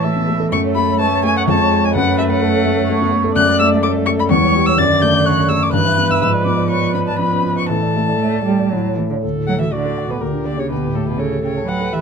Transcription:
Already playing: A2 E3 A3 B4 C#5 A5
0.03 A3 E5
0.16 B3
0.28 A3
0.40 A4
0.51 F#2 A3 A4 C#6
0.64 C#5
0.75 A3 B5
0.88 C#5
0.99 A3 B4 C#5 A5
1.12 C#5
1.23 A3 G#5
1.35 C#5 F#5
1.47 F2 G#3 A5
1.60 C#5
1.72 G#3
1.84 C#5 G#5
1.94 F#2 A3 B4 F#5
2.08 C#5
2.18 A3 E5
2.30 C#5 F#5
2.42 A4 B4
2.54 C#5
2.65 A3
2.77 C#5
2.88 A3 C#5
3.02 B3
3.12 A3
3.24 A4
3.35 F#2 A3 D5 F#6
3.48 D5
3.60 A3 E6
3.72 D5
3.83 A4 C#5 D6
3.95 D5
4.06 A3 C#6
4.19 D5 B5
4.29 E2 G3 C#5 C#6
4.43 C#5
4.55 G3
4.66 C#5 E6
4.77 F#2 D3 D5 A6
4.90 D5
5.02 A3 G6
5.14 D5
5.25 C#5 F#6
5.38 D5
5.49 A3 E6
5.61 D5 D6
5.73 G2 E3 B4 F#6
5.85 E5
5.98 B3
6.10 E5 E6
6.21 G#2 F3 E6
6.33 D5
6.45 B3 D6
6.57 D5
6.69 B4 C#5 C#6
6.81 D5
6.94 B3 B5
7.07 D5 A5
7.18 F3 B3 B5
7.32 C#4
7.43 B3
7.56 B4 C#6
7.69 A2 E3 A4 A5
7.82 D5
7.96 A3
8.09 D5
8.20 A3 C#5
8.34 D5
8.45 G3 A3
8.60 D5
8.71 A2 F#3
8.86 C#5
8.96 E3 A3
9.10 D3 C#5
9.22 D2 A4
9.36 A2
9.47 F#3 A3 F#5
9.59 E3 F#4 E5
9.71 D3 F#4 D5
9.85 A4
9.98 F#5
10.09 B2 B4 D6
10.20 D2 A#2 G4 A#4
10.33 D3
10.45 D3 A#3 D5
10.57 C#3 G4 C#5
10.69 D2 B2 G4 B4
10.83 A2
10.94 A2 A3 A4
11.07 B2 G4 B4
11.18 C#3 A4 C#5
11.32 G4
11.43 C#3 C#5 G5
11.56 A5
11.67 F#3 B4 F#5 G5
11.80 A4
11.92 E3 G4 E5

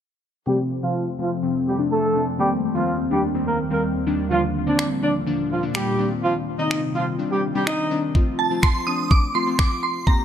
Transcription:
0.47 F2 C3 F3 G3 A3 C4 G4
0.83 C3 F3 A3 C4 F4
1.19 C3 F3 A3 C4 F4
1.43 C3 F3 A3 C4
1.67 G3 G4
1.79 C3 F3 A3 D4
1.91 A3 A4
2.15 C3 F3 A3 D4
2.39 D#2 D#3 G3 A#3 C4 G4
2.75 D#3 F3 G3 A#3 C4 F4
3.11 D#3 G3 A#3 D4 G4
3.34 D#3 G3 A#3 C4
3.47 A#3 A#4
3.70 D#3 G3 A#3 C4 A#4
4.07 D#3 G3 A#3 D4
4.31 A#2 D3 F3 A#3 D4 F4
4.67 D3 F3 A#3 C4 D4 D5
4.79 finger snap
5.02 D3 F3 A#3 D4 D5
5.27 D3 F3 A#3 D4
5.51 F3 F4
5.63 D3 F3 A#3 D4
5.75 G3 G4, finger snap
5.99 C3 D#3 G3 C4 D4
6.23 F3 F4
6.59 D#3 G3 C4 D#4 D#5
6.71 finger snap
6.95 D#3 F3 G3 C4 F4
7.19 D#3 G3 C4 D4
7.31 G3 G4
7.55 D#3 G3 C4 D4 G4
7.67 D#4 D#5, finger snap
7.91 D#3 G3 C4 D4
8.15 F3 A3 C4 F4, kick
8.39 A5
8.51 F3 A3 C4 F4
8.63 C6, finger snap, kick
8.87 F3 A3 C4 D4 D#6
9.11 D6, kick
9.35 F3 A3 C4 F4 C6
9.47 F3 A3 C4 F4
9.59 D6, finger snap, kick
9.83 C6
10.07 A#3 C4 D#4 G4 A#5, kick

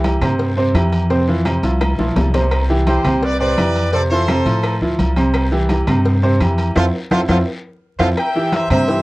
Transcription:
Already playing: C2
0.04 E3 E4 G4, cowbell, high conga, low agogo, short guiro
0.21 G2 C3 C4 C5, cowbell, high conga, low conga, low agogo, short guiro, claves
0.39 cowbell, high conga, long guiro
0.57 C3 C4 C5, high conga
0.74 F2 E3 E4 G4, cowbell, high conga, low agogo, short guiro, claves
0.92 cowbell, low agogo, short guiro
1.10 C3 C4 C5, cowbell, high conga, long guiro
1.27 E3 E4 F4, high conga
1.45 C3 C4 C5, cowbell, high conga, low agogo, short guiro, claves
1.63 C2 F3 E4 F4, cowbell, high conga, low agogo, short guiro
1.81 cowbell, high bongo, high conga, low agogo, long guiro, claves
1.98 B1 F3 E4 F4, high bongo, high conga
2.16 C2, cowbell, low bongo, high conga, low timbale, low agogo, short guiro
2.34 C3 C4 C5, low bongo, high conga, low agogo, short guiro
2.51 cowbell, high conga, low agogo, long guiro, claves
2.69 E3 E4 G4, high conga
2.87 E3 E4 G4 C5, cowbell, high conga, low agogo, short guiro
3.04 C2 C3 C4 C5, cowbell, high conga, low conga, low agogo, short guiro, claves
3.22 B4 D5, cowbell, high conga, long guiro
3.40 C3 C4 B4 C5 D5, high conga
3.57 F2 E3 E4 G4, cowbell, high conga, low agogo, short guiro, claves
3.75 cowbell, high conga, low agogo, short guiro
3.93 C3 C4 A4 C5 D5, cowbell, high conga, long guiro
4.11 E3 E4 F4 A4 C5, high conga
4.28 C3 C4 C5, cowbell, high conga, low agogo, short guiro, claves
4.46 A2 F3 E4 F4, cowbell, high conga, low agogo, short guiro
4.63 cowbell, high conga, low agogo, long guiro, claves
4.81 D2 F3 E4 F4, high conga
4.99 C2, cowbell, high conga, low agogo, short guiro
5.16 C3 C4 C5, high conga, low agogo, short guiro
5.34 cowbell, high conga, low agogo, long guiro, claves
5.52 E3 E4 G4, high conga
5.69 E3 E4 G4, cowbell, high conga, low agogo, short guiro
5.87 G2 C3 C4 C5, cowbell, high conga, low conga, low agogo, short guiro, claves
6.05 cowbell, high conga, long guiro
6.23 C3 C4 C5, high conga
6.40 F2 E3 E4 G4, cowbell, high conga, low agogo, short guiro, claves
6.58 cowbell, high conga, low agogo, short guiro
6.75 F2 C4 E4 F4 A4 C5, cowbell, high conga, high timbale, long guiro, claves
7.11 F2 C4 E4 F4 A4 C5, cowbell, high conga, high timbale, long guiro, claves
7.29 F2 C4 E4 F4 A4 C5, cowbell, high conga, high timbale, long guiro, claves
7.99 F2 C4 E4 F4 A4 C5, cowbell, high conga, high timbale, long guiro, claves
8.17 E5 G5, cowbell, high conga, low agogo, long guiro, claves
8.35 E3 E4 G4, high conga
8.52 C5 E5, cowbell, high conga, low agogo, short guiro
8.69 G2 C3 C4 C5 E5, cowbell, high conga, low conga, low agogo, short guiro, claves
8.88 E3 E4 G4, cowbell, high conga, long guiro

